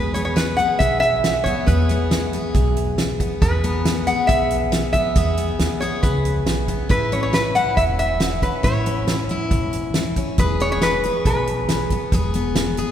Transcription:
Already playing: steel-string acoustic guitar E2 B3 G#4, upright bass E2, resonator guitar played with a steel bar B4
0.14 steel-string acoustic guitar B3, resonator guitar played with a steel bar C#5, closed hi-hat
0.25 resonator guitar played with a steel bar C#5
0.36 steel-string acoustic guitar E3, resonator guitar played with a steel bar B4, snare, closed hi-hat
0.57 steel-string acoustic guitar G#4, resonator guitar played with a steel bar F#5, closed hi-hat
0.79 upright bass B1, steel-string acoustic guitar B2, resonator guitar played with a steel bar E5, kick, closed hi-hat
1.00 resonator guitar played with a steel bar E5, closed hi-hat
1.24 steel-string acoustic guitar E3, snare, closed hi-hat
1.44 steel-string acoustic guitar B3, resonator guitar played with a steel bar C#5, kick, closed hi-hat
1.66 upright bass E2, steel-string acoustic guitar E2 G#4, resonator guitar played with a steel bar B4, kick, closed hi-hat
1.89 steel-string acoustic guitar B3, closed hi-hat
2.11 steel-string acoustic guitar E3, snare, closed hi-hat
2.33 steel-string acoustic guitar G#4, closed hi-hat
2.54 upright bass B1, steel-string acoustic guitar B2, kick, closed hi-hat
2.77 closed hi-hat
2.98 steel-string acoustic guitar E3, snare, closed hi-hat
3.20 steel-string acoustic guitar B3, kick, closed hi-hat
3.42 upright bass E2, steel-string acoustic guitar E2 G#4, resonator guitar played with a steel bar B4, kick, closed hi-hat
3.64 steel-string acoustic guitar B3, closed hi-hat
3.85 steel-string acoustic guitar E3, snare, closed hi-hat
4.07 steel-string acoustic guitar G#4, resonator guitar played with a steel bar F#5, closed hi-hat
4.27 upright bass B1, steel-string acoustic guitar B2, resonator guitar played with a steel bar E5, kick, closed hi-hat
4.50 closed hi-hat
4.72 steel-string acoustic guitar E3, snare, closed hi-hat
4.93 steel-string acoustic guitar B3, resonator guitar played with a steel bar E5, kick, closed hi-hat
5.15 steel-string acoustic guitar E2 G#4, upright bass E2, kick, closed hi-hat
5.37 steel-string acoustic guitar B3, closed hi-hat
5.59 upright bass D#2, snare, closed hi-hat
5.80 steel-string acoustic guitar G#4, resonator guitar played with a steel bar C#5, closed hi-hat
6.03 upright bass C#2, steel-string acoustic guitar B2, resonator guitar played with a steel bar B4, kick, closed hi-hat
6.25 closed hi-hat
6.46 upright bass B1, steel-string acoustic guitar E3, snare, closed hi-hat
6.68 steel-string acoustic guitar B3, kick, closed hi-hat
6.89 upright bass A1, steel-string acoustic guitar A2 E4, resonator guitar played with a steel bar B4, kick, closed hi-hat
7.12 steel-string acoustic guitar C#4, resonator guitar played with a steel bar C#5, closed hi-hat
7.23 resonator guitar played with a steel bar C#5
7.33 steel-string acoustic guitar E3, resonator guitar played with a steel bar B4, snare, closed hi-hat
7.55 steel-string acoustic guitar E4, resonator guitar played with a steel bar F#5, closed hi-hat
7.77 upright bass E1, steel-string acoustic guitar E2, resonator guitar played with a steel bar E5, kick, closed hi-hat
7.99 resonator guitar played with a steel bar E5, closed hi-hat
8.20 steel-string acoustic guitar E3, snare, closed hi-hat
8.42 steel-string acoustic guitar C#4, resonator guitar played with a steel bar B4, kick, closed hi-hat
8.63 upright bass A1, steel-string acoustic guitar A2 E4, resonator guitar played with a steel bar C#5, kick, closed hi-hat
8.86 steel-string acoustic guitar C#4, closed hi-hat
9.07 steel-string acoustic guitar E3, snare, closed hi-hat
9.29 steel-string acoustic guitar E4, closed hi-hat
9.51 upright bass E1, steel-string acoustic guitar E2, kick, closed hi-hat
9.73 closed hi-hat
9.94 steel-string acoustic guitar E3, snare, closed hi-hat
10.16 steel-string acoustic guitar C#4, kick, closed hi-hat
10.38 upright bass E1, steel-string acoustic guitar E2 G#4, resonator guitar played with a steel bar B4, kick, closed hi-hat
10.60 steel-string acoustic guitar B3, resonator guitar played with a steel bar C#5, closed hi-hat
10.72 resonator guitar played with a steel bar C#5
10.81 steel-string acoustic guitar E3, resonator guitar played with a steel bar B4, snare, closed hi-hat
11.04 steel-string acoustic guitar G#4, closed hi-hat
11.25 upright bass B1, steel-string acoustic guitar B2, resonator guitar played with a steel bar B4, kick, closed hi-hat
11.47 closed hi-hat
11.69 steel-string acoustic guitar E3, snare, closed hi-hat
11.90 steel-string acoustic guitar B3, kick, closed hi-hat
12.12 upright bass E1, steel-string acoustic guitar E2 G#4, kick, closed hi-hat
12.34 steel-string acoustic guitar B3, closed hi-hat
12.55 steel-string acoustic guitar E3, snare, closed hi-hat
12.77 steel-string acoustic guitar G#4, closed hi-hat

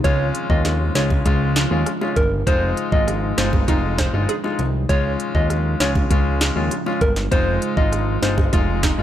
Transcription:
Already playing: ambient pad F3 G#3
0.04 analog synth bass C#2, ambient pad C#3 F4, grand piano G#3 C#4 F4, soft synth lead C#5, kick, closed hi-hat
0.35 closed hi-hat
0.50 analog synth bass D#2, grand piano G#3 C#4 F4, soft synth lead D#5, kick
0.65 snare, closed hi-hat, high bongo
0.95 analog synth bass C#2, grand piano G#3 C#4 F4, soft synth lead C#5, cross-stick, snare, closed hi-hat
1.10 kick, high bongo
1.25 analog synth bass C#2, grand piano G#3 C#4 F4, kick, closed hi-hat
1.56 cross-stick, snare, closed hi-hat, high bongo
1.71 analog synth bass D#2, grand piano G#3 C#4 F4
1.86 cross-stick, closed hi-hat, high bongo
2.01 grand piano G#3 C#4 F4, high bongo
2.16 analog synth bass G1, soft synth lead A#4, kick, closed hi-hat, low bongo
2.47 analog synth bass F1, ambient pad C3 G#3 D#4, grand piano G#3 D#4 F4, soft synth lead C5, kick, closed hi-hat
2.77 closed hi-hat
2.92 analog synth bass G#1, grand piano G#3 D#4 F4, soft synth lead D#5, kick
3.08 cross-stick, closed hi-hat, high bongo
3.37 analog synth bass G1, grand piano G#3 D#4 F4, soft synth lead C5, cross-stick, snare, closed hi-hat
3.53 kick, high bongo
3.68 analog synth bass F1, grand piano G#3 D#4 F4, synth pluck D#4, kick, closed hi-hat
3.98 synth pluck C5, kick, cross-stick, snare, closed hi-hat, high bongo
4.13 analog synth bass G1, grand piano G#3 D#4 F4
4.29 synth pluck G#4, closed hi-hat, high bongo
4.44 grand piano G#3 D#4 F4, high bongo
4.59 analog synth bass C2, closed hi-hat, low bongo
4.89 analog synth bass C#2, ambient pad C#3 F4, grand piano G#3 C#4 F4, soft synth lead C#5, kick, closed hi-hat
5.20 closed hi-hat
5.35 analog synth bass D#2, grand piano G#3 C#4 F4, soft synth lead D#5, kick
5.50 cross-stick, closed hi-hat, high bongo
5.80 analog synth bass C#2, grand piano G#3 C#4 F4, soft synth lead C#5, cross-stick, snare, closed hi-hat
5.95 kick, high bongo
6.10 analog synth bass C#2, grand piano G#3 C#4 F4, kick, closed hi-hat
6.41 cross-stick, snare, closed hi-hat, high bongo
6.56 analog synth bass D#2, grand piano G#3 C#4 F4
6.71 closed hi-hat, high bongo
6.86 grand piano G#3 C#4 F4, high bongo
7.01 analog synth bass G1, soft synth lead A#4, kick, closed hi-hat, low bongo
7.16 snare
7.31 analog synth bass F1, ambient pad C3 F3 D#4, grand piano G#3 D#4 F4, soft synth lead C5, kick, closed hi-hat
7.62 closed hi-hat
7.77 analog synth bass G#1, grand piano G#3 D#4 F4, soft synth lead D#5, kick
7.92 cross-stick, closed hi-hat, high bongo
8.22 analog synth bass G1, grand piano G#3 D#4 F4, soft synth lead C5, cross-stick, snare, closed hi-hat
8.38 kick, high bongo
8.53 analog synth bass F1, grand piano G#3 D#4 F4, synth pluck F4, kick, closed hi-hat
8.83 synth pluck D#4, kick, cross-stick, snare, closed hi-hat, high bongo
8.98 analog synth bass G1, grand piano G#3 D#4 F4

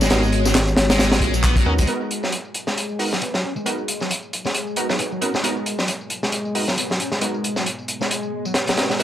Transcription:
Already playing: detuned saw bass G#1, analog synth pad G#3 B3 F#4 C#5
0.01 distorted electric guitar G#3, snare, tambourine
0.10 distorted electric guitar G#3, synth stab B3 D#4 F#4 A#4, snare, closed hi-hat, tambourine
0.23 tambourine
0.32 closed hi-hat
0.45 distorted electric guitar F#3, snare, tambourine
0.55 snare, clap, closed hi-hat, tambourine
0.68 tambourine
0.77 detuned saw bass G#1, snare, closed hi-hat
0.90 distorted electric guitar G#3, snare, closed hi-hat, tambourine
0.99 snare, closed hi-hat, tambourine
1.12 snare, closed hi-hat, tambourine
1.21 detuned saw bass A#1, kick, closed hi-hat
1.34 distorted electric guitar F#3, tambourine
1.44 distorted electric guitar B3, kick, clap, closed hi-hat, tambourine
1.56 distorted electric guitar F#3, kick, closed hi-hat, tambourine
1.66 detuned saw bass D#2, synth stab B3 D#4 F#4 A#4, distorted electric guitar C#4
1.78 distorted electric guitar G#3, kick, closed hi-hat, tambourine
1.87 analog synth pad G#3 B3 F#4 A#4, distorted electric guitar G#3, synth stab B3 D#4 F#4 A#4, closed hi-hat
2.01 tambourine
2.11 closed hi-hat
2.23 distorted electric guitar F#3, snare, tambourine
2.32 closed hi-hat, tambourine
2.45 tambourine
2.54 closed hi-hat
2.67 distorted electric guitar G#3, snare, tambourine
2.77 closed hi-hat, tambourine
2.89 tambourine
2.99 synth stab B3 D#4 F#4 A#4, open hi-hat
3.12 distorted electric guitar F#3, snare, tambourine
3.21 distorted electric guitar B3, closed hi-hat, tambourine
3.34 distorted electric guitar F#3, snare, tambourine
3.44 distorted electric guitar C#4
3.56 distorted electric guitar G#3, tambourine
3.66 distorted electric guitar G#3, synth stab B3 D#4 F#4 A#4, closed hi-hat, tambourine
3.78 tambourine
3.88 closed hi-hat
4.00 distorted electric guitar F#3, snare, tambourine
4.10 closed hi-hat, tambourine
4.22 tambourine
4.33 closed hi-hat
4.45 distorted electric guitar G#3, snare, tambourine
4.54 closed hi-hat, tambourine
4.67 tambourine
4.76 synth stab B3 D#4 F#4 A#4, closed hi-hat
4.89 distorted electric guitar F#3, synth stab B3 D#4 F#4 G#4, snare, tambourine
4.99 distorted electric guitar B3, closed hi-hat, tambourine
5.12 distorted electric guitar F#3, tambourine
5.21 synth stab B3 D#4 F#4 A#4, distorted electric guitar C#4, closed hi-hat
5.34 distorted electric guitar G#3, snare, tambourine
5.44 distorted electric guitar G#3, synth stab B3 D#4 F#4 A#4, closed hi-hat, tambourine
5.57 tambourine
5.66 closed hi-hat
5.79 distorted electric guitar F#3, snare, tambourine
5.88 closed hi-hat, tambourine
6.01 tambourine
6.10 closed hi-hat
6.23 distorted electric guitar G#3, snare, tambourine
6.32 closed hi-hat, tambourine
6.45 tambourine
6.55 synth stab B3 D#4 F#4 A#4, open hi-hat
6.67 distorted electric guitar F#3, snare, tambourine
6.77 distorted electric guitar B3, closed hi-hat, tambourine
6.90 distorted electric guitar F#3, snare, tambourine
6.99 distorted electric guitar C#4, closed hi-hat
7.12 distorted electric guitar G#3, snare, tambourine
7.21 distorted electric guitar G#3, synth stab B3 D#4 F#4 A#4, closed hi-hat, tambourine
7.34 tambourine
7.44 closed hi-hat
7.56 distorted electric guitar F#3, snare, tambourine
7.66 closed hi-hat, tambourine
7.79 tambourine
7.88 closed hi-hat
8.01 distorted electric guitar G#3, snare, tambourine
8.10 closed hi-hat, tambourine
8.23 tambourine
8.45 distorted electric guitar F#3, tambourine
8.54 distorted electric guitar B3, snare, closed hi-hat, tambourine
8.67 distorted electric guitar F#3, snare, closed hi-hat, tambourine
8.77 synth stab B3 D#4 F#4 A#4, distorted electric guitar C#4, snare, closed hi-hat
8.89 distorted electric guitar G#3, snare, tambourine
8.99 distorted electric guitar G#3, synth stab B3 D#4 F#4 A#4, analog synth pad F4, closed hi-hat, tambourine

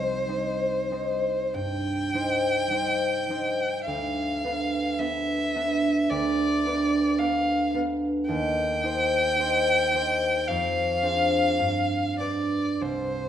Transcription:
Already playing: harp C2 G3 D#4 G4 C5, violin C5
0.28 harp G3 D#4 C5
0.92 harp G3 D#4 C5
1.54 harp G2, violin G5
2.14 harp G3 D#4 C5
2.70 harp G3 D#4 C5
3.29 harp G3 D#4 C5
3.87 harp D2, violin F5
4.44 harp B3 D4 B4
4.98 harp B3 D4 B4, violin E5
5.55 harp B3 D4 B4
6.10 harp D2, violin D5
6.66 harp B3 D4 B4
7.19 harp B3 D4 B4, violin F5
7.75 harp B3 D4 B4
8.29 harp D#2, violin G5
8.83 harp D#4 G4 C5
9.39 harp D#4 G4 C5
9.94 harp D#4 G4 C5
10.48 harp F2, violin F5
11.02 harp D4 G#4 C5
11.60 harp G2
12.19 harp D4 G4 B4, violin D5
12.81 harp C2, violin C5

